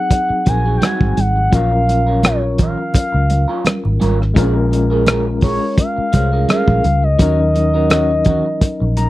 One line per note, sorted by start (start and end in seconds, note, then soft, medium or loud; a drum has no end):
0.00 1.48 F#3 medium
0.00 1.48 C4 medium
0.00 1.49 D#4 medium
0.00 1.49 G#4 medium
0.00 0.50 F#5 loud
0.10 muted clean electric guitar stroke soft
0.10 kick medium
0.10 closed hi-hat medium
0.10 muted conga soft
0.29 muted clean electric guitar stroke soft
0.29 muted fingered electric bass stroke soft
0.46 0.77 A#1 medium
0.46 0.63 C4 medium
0.46 0.63 F#4 medium
0.46 0.63 A#4 medium
0.46 0.76 G#5 loud
0.46 kick medium
0.46 closed hi-hat medium
0.46 muted conga soft
0.64 0.80 C4 soft
0.64 0.80 F#4 soft
0.64 0.79 G#4 medium
0.77 1.14 C4 medium
0.77 0.86 G5 medium
0.82 1.15 F#4 medium
0.82 1.15 G#4 medium
0.82 1.21 G#5 medium
0.82 cross-stick loud
0.82 closed hi-hat medium
0.82 high conga medium
1.01 1.15 G#1 medium
1.01 kick medium
1.01 high conga soft
1.17 1.48 G#1 medium
1.17 1.56 F#5 loud
1.17 muted clean electric guitar stroke soft
1.17 closed hi-hat medium
1.17 high conga medium
1.36 muted clean electric guitar stroke soft
1.51 2.74 A#1 medium
1.51 4.31 F#3 medium
1.51 4.32 C#4 medium
1.51 1.73 C#4 medium
1.51 4.32 F4 medium
1.51 1.71 F4 medium
1.51 1.70 A#4 medium
1.51 4.33 A#4 medium
1.51 2.27 F5 loud
1.51 kick loud
1.51 closed hi-hat medium
1.72 muted clean electric guitar stroke soft
1.88 muted clean electric guitar stroke soft
1.88 closed hi-hat medium
1.88 muted conga soft
2.06 2.21 C#4 soft
2.06 2.21 F4 medium
2.06 2.21 A#4 medium
2.22 2.44 C#4 medium
2.22 2.42 F4 medium
2.22 2.41 A#4 medium
2.22 2.60 C#5 medium
2.22 cross-stick loud
2.22 closed hi-hat medium
2.22 high conga medium
2.42 muted clean electric guitar stroke soft
2.58 2.75 C#4 soft
2.58 2.76 F4 soft
2.58 2.76 A#4 medium
2.58 3.98 F5 loud
2.58 kick medium
2.58 closed hi-hat medium
2.58 low conga medium
2.77 muted clean electric guitar stroke soft
2.93 muted clean electric guitar stroke soft
2.93 muted fingered electric bass stroke soft
2.93 kick medium
2.93 closed hi-hat loud
2.93 muted conga soft
3.12 3.44 C#2 medium
3.12 muted clean electric guitar stroke soft
3.30 closed hi-hat medium
3.30 muted conga soft
3.48 3.63 C#4 medium
3.48 3.64 F4 medium
3.48 3.65 A#4 medium
3.65 muted clean electric guitar stroke soft
3.65 cross-stick medium
3.65 closed hi-hat medium
3.65 high conga medium
3.84 3.99 G#1 medium
3.84 muted clean electric guitar stroke soft
3.84 high conga soft
4.00 4.32 G#1 medium
4.00 4.21 C#4 medium
4.00 4.19 F4 medium
4.00 4.18 A#4 medium
4.00 closed hi-hat medium
4.00 high conga medium
4.19 muted clean electric guitar stroke soft
4.19 cross-stick soft
4.34 5.58 A#1 medium
4.34 7.15 G#3 medium
4.34 4.43 C4 soft
4.34 4.56 C#4 medium
4.34 7.16 F4 medium
4.34 4.55 G#4 medium
4.34 4.54 A#4 medium
4.34 7.17 A#4 medium
4.34 kick loud
4.34 closed hi-hat medium
4.42 7.18 C#4 medium
4.55 muted clean electric guitar stroke soft
4.71 muted clean electric guitar stroke soft
4.71 closed hi-hat medium
4.71 muted conga soft
4.90 5.05 C#4 soft
4.90 5.05 G#4 soft
4.90 5.05 A#4 medium
5.06 5.27 C#4 medium
5.06 5.26 G#4 medium
5.06 5.25 A#4 medium
5.06 cross-stick loud
5.06 closed hi-hat medium
5.06 high conga medium
5.26 muted clean electric guitar stroke soft
5.41 5.59 C#4 soft
5.41 5.59 G#4 medium
5.41 5.60 A#4 soft
5.41 5.76 C#5 medium
5.41 kick medium
5.41 open hi-hat soft
5.61 muted clean electric guitar stroke soft
5.77 6.45 F5 loud
5.77 muted clean electric guitar stroke soft
5.77 kick medium
5.77 closed hi-hat medium
5.77 muted conga soft
5.97 muted clean electric guitar stroke soft
5.97 muted fingered electric bass stroke soft
6.12 6.44 C2 medium
6.12 6.30 C#4 medium
6.12 6.30 G#4 medium
6.12 6.30 C5 medium
6.12 kick medium
6.12 closed hi-hat medium
6.12 muted conga soft
6.32 6.47 C#4 soft
6.32 6.47 G#4 soft
6.32 6.46 A#4 soft
6.48 6.81 C#4 medium
6.48 6.82 G#4 medium
6.48 6.82 A#4 medium
6.48 7.05 F5 loud
6.48 cross-stick loud
6.48 closed hi-hat medium
6.48 high conga medium
6.68 6.82 A#1 medium
6.68 kick medium
6.68 high conga soft
6.84 7.15 C#2 medium
6.84 muted clean electric guitar stroke soft
6.84 closed hi-hat medium
6.84 high conga medium
7.03 9.10 D#5 loud
7.03 muted clean electric guitar stroke soft
7.18 8.41 D#2 medium
7.18 9.10 F#3 medium
7.18 7.40 C#4 medium
7.18 9.10 C#4 medium
7.18 9.10 D#4 medium
7.18 7.38 F#4 medium
7.18 7.37 A#4 medium
7.18 9.10 A#4 medium
7.18 kick loud
7.18 closed hi-hat medium
7.38 muted clean electric guitar stroke soft
7.55 muted clean electric guitar stroke soft
7.55 closed hi-hat medium
7.55 muted conga soft
7.74 7.89 C#4 soft
7.74 7.89 F#4 soft
7.74 7.88 A#4 soft
7.90 8.11 C#4 medium
7.90 8.10 F#4 medium
7.90 8.08 A#4 medium
7.90 cross-stick loud
7.90 closed hi-hat medium
7.90 high conga medium
8.10 muted clean electric guitar stroke soft
8.25 8.42 C#4 soft
8.25 8.43 F#4 medium
8.25 8.43 A#4 medium
8.25 kick medium
8.25 closed hi-hat medium
8.25 low conga medium
8.45 muted clean electric guitar stroke soft
8.61 muted clean electric guitar stroke soft
8.61 muted fingered electric bass stroke soft
8.61 kick medium
8.61 closed hi-hat medium
8.61 muted conga medium
8.80 9.10 A#1 medium
8.80 muted clean electric guitar stroke soft
8.97 9.10 A#5 medium
8.97 closed hi-hat medium
8.97 muted conga soft